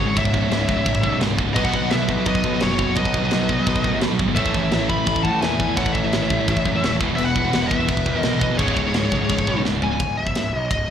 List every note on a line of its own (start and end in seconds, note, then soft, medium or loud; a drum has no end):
0.00 0.13 G#1 loud
0.00 0.14 C#2 medium
0.00 0.15 G#2 loud
0.00 0.16 C#3 medium
0.00 0.14 G#4 medium
0.00 0.18 C#5 medium
0.06 0.14 C#2 medium
0.06 0.14 G#2 medium
0.15 0.48 C#1 loud
0.15 0.31 C#2 medium
0.15 0.31 G#2 medium
0.15 1.56 C#3 loud
0.15 1.18 C#5 medium
0.15 1.18 E5 medium
0.15 kick loud
0.15 crash medium
0.25 kick medium
0.33 0.41 C#2 medium
0.33 0.41 G#2 medium
0.33 kick medium
0.42 0.49 C#2 medium
0.42 0.49 G#2 medium
0.50 0.67 C#1 medium
0.50 0.58 C#2 medium
0.50 0.58 G#2 loud
0.50 snare loud
0.50 crash medium
0.59 0.67 C#2 medium
0.59 0.66 G#2 medium
0.67 0.84 C#1 medium
0.67 0.75 C#2 medium
0.67 0.75 G#2 medium
0.67 kick medium
0.76 0.83 C#2 medium
0.76 0.84 G#2 medium
0.85 1.02 C#1 medium
0.85 1.01 C#2 medium
0.85 1.00 G#2 medium
0.85 kick loud
0.85 crash medium
0.95 kick medium
1.02 1.20 B1 medium
1.02 1.10 C#2 medium
1.02 1.09 G#2 medium
1.02 kick medium
1.10 1.18 C#2 medium
1.10 1.19 G#2 medium
1.20 1.37 C#1 loud
1.20 1.27 C#2 medium
1.20 1.26 G#2 medium
1.20 snare loud
1.20 crash medium
1.28 1.37 C#2 medium
1.28 1.36 G#2 medium
1.37 1.55 C#1 medium
1.37 1.46 C#2 medium
1.37 1.46 G#2 medium
1.37 kick loud
1.47 1.55 C#2 medium
1.47 1.55 G#2 medium
1.54 1.72 B1 loud
1.54 1.71 B2 medium
1.54 1.71 F#3 loud
1.54 1.73 B3 loud
1.54 1.64 B4 medium
1.54 1.64 D#5 medium
1.54 kick loud
1.54 crash medium
1.64 1.89 D#5 medium
1.64 1.92 F#5 loud
1.64 kick medium
1.72 1.90 B1 medium
1.72 1.81 B2 medium
1.72 1.81 F#3 medium
1.72 kick medium
1.82 1.90 B2 medium
1.82 1.90 F#3 medium
1.90 2.07 B1 medium
1.90 1.99 B2 medium
1.90 1.98 F#3 medium
1.90 2.23 B4 medium
1.90 2.27 E5 loud
1.90 snare loud
1.90 crash medium
2.00 2.07 B2 medium
2.00 2.06 F#3 medium
2.08 2.25 B1 medium
2.08 2.16 B2 medium
2.08 2.16 F#3 medium
2.08 kick medium
2.17 2.25 B2 medium
2.17 2.25 F#3 medium
2.26 2.42 B1 medium
2.26 2.42 B2 medium
2.26 2.42 F#3 medium
2.26 2.59 B4 medium
2.26 2.62 D#5 loud
2.26 kick loud
2.26 crash medium
2.35 kick medium
2.44 2.60 B1 medium
2.44 2.52 B2 medium
2.44 2.52 F#3 medium
2.44 kick medium
2.53 2.61 B2 medium
2.53 2.61 F#3 medium
2.60 2.94 F#1 loud
2.60 2.70 B2 medium
2.60 2.70 F#3 medium
2.60 2.95 F#4 medium
2.60 2.96 C#5 medium
2.60 snare loud
2.60 crash medium
2.71 2.80 B2 medium
2.71 2.79 F#3 medium
2.79 2.88 B2 medium
2.79 2.88 F#3 medium
2.79 kick medium
2.89 2.97 B2 medium
2.89 2.97 F#3 medium
2.95 3.29 B1 loud
2.95 3.13 B2 medium
2.95 3.13 F#3 medium
2.95 3.99 B4 medium
2.95 3.98 D#5 medium
2.95 kick loud
2.95 crash medium
3.00 4.37 B3 loud
3.05 kick medium
3.14 3.24 B2 medium
3.14 3.24 F#3 medium
3.14 kick medium
3.25 3.32 B2 medium
3.25 3.32 F#3 medium
3.31 3.48 B1 medium
3.31 3.40 B2 medium
3.31 3.40 F#3 medium
3.31 snare medium
3.31 crash medium
3.41 3.49 B2 medium
3.41 3.49 F#3 medium
3.49 3.65 B1 medium
3.49 3.58 B2 medium
3.49 3.58 F#3 medium
3.49 kick medium
3.59 3.66 B2 medium
3.59 3.67 F#3 medium
3.66 3.83 B1 medium
3.66 3.83 B2 medium
3.66 3.83 F#3 medium
3.66 kick loud
3.66 crash medium
3.76 kick medium
3.84 4.01 A1 medium
3.84 3.93 B2 medium
3.84 3.92 F#3 medium
3.84 kick medium
3.94 4.01 B2 medium
3.94 4.01 F#3 medium
4.01 4.18 B1 loud
4.01 4.10 B2 medium
4.01 4.10 F#3 loud
4.01 snare loud
4.01 crash medium
4.11 4.17 B2 medium
4.11 4.17 F#3 medium
4.18 4.35 G#1 medium
4.18 4.27 B2 medium
4.18 4.27 F#3 medium
4.18 kick medium
4.28 4.34 B2 medium
4.28 4.35 F#3 medium
4.35 4.53 A1 medium
4.35 4.52 A2 medium
4.35 4.52 E3 loud
4.35 4.53 A3 loud
4.35 4.87 C#5 medium
4.35 4.91 E5 loud
4.35 kick loud
4.35 crash medium
4.46 kick medium
4.54 4.71 A1 medium
4.54 4.60 A2 medium
4.54 4.60 E3 medium
4.54 kick medium
4.61 4.69 A2 medium
4.61 4.70 E3 medium
4.70 4.88 A1 medium
4.70 4.78 A2 medium
4.70 4.78 E3 medium
4.70 snare loud
4.70 crash medium
4.79 4.87 A2 medium
4.79 4.87 E3 medium
4.88 5.06 A1 medium
4.88 4.96 A2 medium
4.88 4.95 E3 medium
4.88 5.22 E5 medium
4.88 5.26 B5 loud
4.88 kick medium
4.96 5.04 A2 medium
4.96 5.04 E3 medium
5.05 5.23 A1 medium
5.05 5.22 A2 medium
5.05 5.22 E3 medium
5.05 kick loud
5.05 crash medium
5.16 kick loud
5.23 5.31 A2 medium
5.23 5.41 A2 medium
5.23 5.31 E3 medium
5.23 5.42 F#5 medium
5.23 5.41 A5 medium
5.23 kick medium
5.32 5.39 A2 medium
5.32 5.40 E3 medium
5.40 5.75 E2 loud
5.40 5.50 A2 medium
5.40 5.49 E3 medium
5.40 5.77 E5 medium
5.40 5.76 G#5 medium
5.40 snare loud
5.40 crash medium
5.50 5.58 A2 medium
5.50 5.58 E3 medium
5.59 5.66 A2 medium
5.59 5.66 E3 medium
5.59 kick loud
5.67 5.75 A2 medium
5.67 5.75 E3 medium
5.76 6.10 A1 loud
5.76 5.93 A2 medium
5.76 5.93 E3 loud
5.76 7.01 A3 loud
5.76 5.91 C#5 medium
5.76 5.95 F#5 loud
5.76 kick loud
5.76 crash medium
5.86 kick medium
5.92 6.03 A2 medium
5.92 6.02 E3 medium
5.92 6.95 C#5 medium
5.92 6.95 E5 loud
5.92 kick medium
6.03 6.11 A2 medium
6.03 6.12 E3 medium
6.12 6.29 A1 medium
6.12 6.20 A2 medium
6.12 6.20 E3 loud
6.12 snare loud
6.12 crash medium
6.21 6.29 A2 medium
6.21 6.29 E3 medium
6.30 6.46 A1 medium
6.30 6.37 A2 medium
6.30 6.37 E3 medium
6.30 kick medium
6.39 6.46 A2 medium
6.39 6.47 E3 medium
6.48 6.64 A1 loud
6.48 6.64 A2 medium
6.48 6.64 E3 loud
6.48 kick loud
6.48 crash medium
6.57 kick medium
6.65 6.81 F#2 loud
6.65 6.73 A2 medium
6.65 6.73 E3 medium
6.65 kick medium
6.74 6.82 A2 medium
6.74 6.83 E3 medium
6.83 6.99 D#1 loud
6.83 6.92 A2 medium
6.83 6.92 E3 medium
6.83 snare loud
6.83 crash medium
6.93 7.00 A2 medium
6.93 7.01 E3 medium
7.00 7.17 E1 medium
7.00 7.08 E2 loud
7.00 7.08 B2 medium
7.00 7.09 E3 loud
7.00 kick loud
7.09 7.17 E2 medium
7.09 7.17 B2 medium
7.15 7.34 E1 loud
7.15 7.34 E2 medium
7.15 7.34 B2 medium
7.15 7.23 B4 medium
7.15 7.24 E5 loud
7.15 crash medium
7.24 7.66 B4 medium
7.24 7.68 F#5 medium
7.35 7.52 E1 loud
7.35 7.45 E2 medium
7.35 7.44 B2 medium
7.35 kick medium
7.45 7.52 E2 medium
7.45 7.52 B2 medium
7.53 7.69 E1 medium
7.53 7.61 E2 medium
7.53 7.60 B2 medium
7.53 snare loud
7.53 crash medium
7.62 7.71 E2 medium
7.62 7.71 B2 medium
7.67 7.87 E1 medium
7.67 8.15 B4 medium
7.67 8.20 E5 loud
7.67 kick loud
7.72 7.79 E2 medium
7.72 7.79 B2 medium
7.80 7.88 E2 medium
7.80 7.88 B2 medium
7.88 8.05 E1 medium
7.88 8.05 E2 medium
7.88 8.05 B2 medium
7.88 kick loud
7.88 crash medium
7.97 kick medium
8.06 8.22 E2 medium
8.06 8.15 E2 medium
8.06 8.14 B2 medium
8.06 kick medium
8.15 8.22 E2 medium
8.15 8.23 B2 medium
8.15 8.36 A#4 medium
8.20 8.56 B1 medium
8.20 8.32 E2 medium
8.20 8.31 B2 medium
8.20 8.39 D#5 loud
8.20 snare loud
8.20 crash medium
8.33 8.42 E2 medium
8.33 8.41 B2 medium
8.39 8.50 E2 medium
8.39 8.49 B2 medium
8.39 8.57 B4 medium
8.39 8.58 D#5 medium
8.39 kick loud
8.50 8.59 E2 medium
8.50 8.59 B2 medium
8.58 8.91 C#1 loud
8.58 8.75 C#2 medium
8.58 8.75 G#2 medium
8.58 8.76 C#3 loud
8.58 9.60 G#4 medium
8.58 9.60 C#5 medium
8.58 kick loud
8.58 crash medium
8.68 kick medium
8.76 8.84 C#2 medium
8.76 8.84 G#2 medium
8.76 kick medium
8.85 8.93 C#2 medium
8.85 8.94 G#2 medium
8.94 9.11 C#1 medium
8.94 9.03 C#2 medium
8.94 9.02 G#2 medium
8.94 snare loud
8.94 crash medium
9.03 9.12 C#2 medium
9.03 9.11 G#2 medium
9.12 9.28 C#1 medium
9.12 9.21 C#2 medium
9.12 9.20 G#2 medium
9.12 kick medium
9.22 9.29 C#2 medium
9.22 9.29 G#2 medium
9.29 9.46 C#1 medium
9.29 9.46 C#2 medium
9.29 9.46 G#2 medium
9.29 kick loud
9.29 crash medium
9.39 kick medium
9.47 9.63 B1 medium
9.47 9.56 C#2 medium
9.47 9.56 G#2 medium
9.47 kick medium
9.57 9.64 C#2 medium
9.57 9.65 G#2 medium
9.65 9.81 C#1 loud
9.65 9.74 C#2 medium
9.65 9.74 G#2 medium
9.65 snare medium
9.75 9.83 C#2 medium
9.75 9.83 G#2 medium
9.82 9.98 C#1 medium
9.82 9.92 C#2 medium
9.82 9.92 G#2 medium
9.82 10.16 G#5 loud
9.82 floor tom loud
9.93 10.01 C#2 medium
9.93 10.01 G#2 medium
10.00 10.15 C#1 loud
10.00 kick loud
10.00 ride bell medium
10.17 10.32 C#1 medium
10.17 10.57 E5 medium
10.27 kick medium
10.35 10.50 C#1 medium
10.35 snare medium
10.35 ride bell medium
10.53 10.67 B1 medium
10.57 10.71 D#5 medium
10.71 10.85 C#1 medium
10.71 10.90 D#5 medium
10.71 kick loud
10.71 ride bell medium